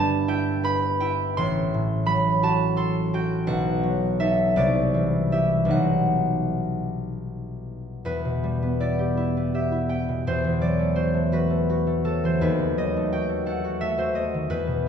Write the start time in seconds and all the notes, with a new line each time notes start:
Already playing: G1 G2 G3 B4 G5 A5 B5
0.28 E4 G5
0.64 B4 B5
1.00 E4 G5
1.37 A1 C6
1.74 A2
2.06 F#3 B5
2.43 F#4 A5
2.76 A4 C6
3.13 F#4 G5
3.47 B1 F#5
3.83 F#3
4.20 D#4 A4 E5
4.56 C2 D5
4.94 E3
5.32 E4 G4 E5
5.65 B1 F#3 B3 D#4
5.71 F#5
8.05 E2 B4
8.25 B2
8.44 G3
8.62 B3
8.80 E4 D5
8.99 G4
9.17 E4
9.37 B3
9.54 G4 E5
9.72 E4
9.89 B3 G5
10.08 B2
10.27 E2 C5
10.44 E3
10.61 F#3 D5
10.79 A3
10.96 F#4 C5
11.14 A3
11.32 F#4 B4
11.50 A3
11.70 F#4
11.87 A3
12.04 F#3 A4
12.24 E3 C5
12.41 D#2 B4
12.59 D#3
12.77 F#3 D#5
12.97 A3
13.12 F#4 G5
13.29 A3
13.46 A4 F#5
13.64 F#4
13.81 A3 E5
13.98 F#4 C5
14.15 A3 D#5
14.34 D#3
14.50 E2 B4
14.67 B2